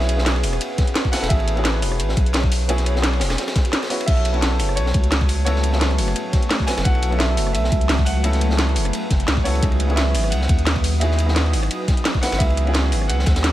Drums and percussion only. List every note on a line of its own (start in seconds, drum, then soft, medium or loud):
0.00 snare soft
0.09 closed hi-hat medium
0.09 ride medium
0.18 snare medium
0.26 snare loud
0.26 closed hi-hat medium
0.26 ride medium
0.35 cross-stick soft
0.35 ride soft
0.43 open hi-hat medium
0.43 ride medium
0.53 cross-stick soft
0.53 ride soft
0.61 closed hi-hat medium
0.61 ride medium
0.78 kick loud
0.78 snare soft
0.78 closed hi-hat medium
0.78 ride medium
0.87 closed hi-hat soft
0.95 snare loud
0.95 closed hi-hat medium
0.95 ride medium
1.05 kick medium
1.13 cross-stick soft
1.13 snare loud
1.13 open hi-hat medium
1.13 ride medium
1.23 snare loud
1.23 ride medium
1.30 kick loud
1.30 closed hi-hat loud
1.30 ride medium
1.40 ride soft
1.48 closed hi-hat medium
1.48 ride medium
1.57 ride soft
1.65 snare loud
1.65 closed hi-hat medium
1.65 ride medium
1.74 cross-stick soft
1.82 open hi-hat medium
1.82 ride medium
1.92 cross-stick soft
2.00 closed hi-hat loud
2.00 ride medium
2.09 snare medium
2.17 kick loud
2.17 closed hi-hat medium
2.17 ride medium
2.26 closed hi-hat soft
2.34 snare loud
2.34 closed hi-hat medium
2.34 ride medium
2.43 kick medium
2.43 ride soft
2.52 open hi-hat medium
2.52 ride medium
2.69 closed hi-hat loud
2.69 ride loud
2.78 snare soft
2.78 closed hi-hat soft
2.86 closed hi-hat medium
2.86 ride medium
2.96 snare medium
3.03 snare loud
3.03 closed hi-hat medium
3.03 ride medium
3.13 cross-stick soft
3.13 ride soft
3.20 snare loud
3.20 open hi-hat medium
3.20 ride medium
3.30 cross-stick soft
3.30 snare soft
3.30 snare loud
3.30 ride medium
3.38 snare medium
3.38 closed hi-hat loud
3.38 ride medium
3.48 cross-stick soft
3.48 snare loud
3.48 ride medium
3.56 kick loud
3.56 snare medium
3.56 closed hi-hat medium
3.56 ride medium
3.65 closed hi-hat soft
3.65 ride soft
3.73 snare loud
3.73 snare medium
3.73 closed hi-hat loud
3.73 ride medium
3.83 snare loud
3.83 ride medium
3.90 cross-stick soft
3.90 open hi-hat medium
3.90 ride soft
4.00 ride medium
4.08 kick loud
4.08 closed hi-hat loud
4.08 crash medium
4.08 ride medium
4.17 ride soft
4.25 closed hi-hat medium
4.25 ride medium
4.34 ride soft
4.42 snare loud
4.42 closed hi-hat medium
4.42 ride medium
4.52 cross-stick soft
4.59 open hi-hat medium
4.59 ride medium
4.69 cross-stick soft
4.77 closed hi-hat loud
4.77 ride medium
4.86 snare medium
4.94 kick loud
4.94 closed hi-hat medium
4.94 ride medium
5.04 closed hi-hat soft
5.11 snare loud
5.11 closed hi-hat medium
5.11 ride medium
5.21 kick medium
5.21 ride soft
5.29 open hi-hat medium
5.29 ride medium
5.46 closed hi-hat loud
5.46 ride medium
5.56 snare soft
5.63 closed hi-hat medium
5.63 ride medium
5.73 snare medium
5.81 snare loud
5.81 closed hi-hat medium
5.81 ride medium
5.90 cross-stick soft
5.90 ride soft
5.98 open hi-hat medium
5.98 ride medium
6.08 cross-stick soft
6.08 ride soft
6.16 closed hi-hat loud
6.16 ride medium
6.33 kick loud
6.33 snare soft
6.33 closed hi-hat medium
6.33 ride medium
6.43 closed hi-hat soft
6.51 snare loud
6.51 closed hi-hat medium
6.51 ride medium
6.60 kick medium
6.67 cross-stick medium
6.67 snare loud
6.67 open hi-hat medium
6.67 ride medium
6.77 snare loud
6.77 ride medium
6.85 kick loud
6.85 closed hi-hat medium
6.85 ride medium
6.95 ride soft
7.02 closed hi-hat medium
7.02 ride medium
7.12 ride soft
7.20 snare loud
7.20 closed hi-hat medium
7.20 ride medium
7.29 cross-stick soft
7.37 open hi-hat medium
7.37 ride medium
7.47 cross-stick soft
7.55 closed hi-hat medium
7.55 ride medium
7.64 snare medium
7.72 kick loud
7.72 closed hi-hat medium
7.72 ride medium
7.81 closed hi-hat soft
7.89 snare loud
7.89 closed hi-hat medium
7.89 ride medium
7.98 kick medium
7.98 ride soft
8.06 open hi-hat medium
8.06 ride medium
8.24 closed hi-hat medium
8.24 ride medium
8.33 snare soft
8.33 closed hi-hat soft
8.41 closed hi-hat medium
8.41 ride medium
8.50 snare medium
8.58 snare loud
8.58 closed hi-hat medium
8.58 ride medium
8.68 cross-stick soft
8.68 ride soft
8.76 open hi-hat medium
8.76 ride medium
8.85 cross-stick soft
8.85 closed hi-hat soft
8.85 ride soft
8.93 closed hi-hat medium
8.93 ride medium
9.11 kick loud
9.11 snare soft
9.11 closed hi-hat medium
9.11 ride medium
9.20 closed hi-hat soft
9.27 snare loud
9.27 closed hi-hat medium
9.27 ride medium
9.37 kick medium
9.45 cross-stick soft
9.45 open hi-hat medium
9.45 ride medium
9.55 ride soft
9.62 kick loud
9.62 closed hi-hat medium
9.62 ride medium
9.72 ride soft
9.80 closed hi-hat medium
9.80 ride medium
9.90 ride soft
9.97 snare loud
9.97 closed hi-hat medium
9.97 ride medium
10.06 cross-stick soft
10.15 open hi-hat medium
10.15 ride medium
10.24 cross-stick soft
10.32 closed hi-hat medium
10.32 ride medium
10.42 snare medium
10.49 kick loud
10.49 closed hi-hat medium
10.49 ride medium
10.59 closed hi-hat soft
10.66 snare loud
10.66 closed hi-hat medium
10.66 ride medium
10.76 kick medium
10.76 ride soft
10.84 open hi-hat medium
10.84 ride medium
11.01 closed hi-hat loud
11.01 ride medium
11.11 snare soft
11.19 closed hi-hat medium
11.19 ride medium
11.28 snare medium
11.36 snare loud
11.36 closed hi-hat medium
11.36 ride medium
11.45 cross-stick soft
11.45 ride soft
11.53 open hi-hat medium
11.53 ride medium
11.63 cross-stick soft
11.63 ride soft
11.71 closed hi-hat loud
11.71 ride medium
11.88 kick loud
11.88 snare soft
11.88 closed hi-hat medium
11.88 ride medium
11.97 closed hi-hat soft
12.05 snare loud
12.05 closed hi-hat loud
12.05 ride medium
12.15 kick medium
12.23 cross-stick soft
12.23 snare loud
12.23 open hi-hat medium
12.23 ride medium
12.32 snare loud
12.32 ride medium
12.40 kick loud
12.40 closed hi-hat loud
12.40 ride medium
12.50 ride soft
12.57 closed hi-hat medium
12.57 ride medium
12.67 ride soft
12.74 snare loud
12.74 closed hi-hat medium
12.74 ride medium
12.84 cross-stick soft
12.92 open hi-hat medium
12.92 ride medium
13.01 cross-stick soft
13.10 closed hi-hat loud
13.10 ride medium
13.19 snare medium
13.26 kick loud
13.26 snare loud
13.26 closed hi-hat medium
13.26 ride medium
13.36 snare loud
13.36 closed hi-hat soft
13.36 ride medium
13.44 snare loud
13.44 snare medium
13.44 closed hi-hat medium
13.44 ride medium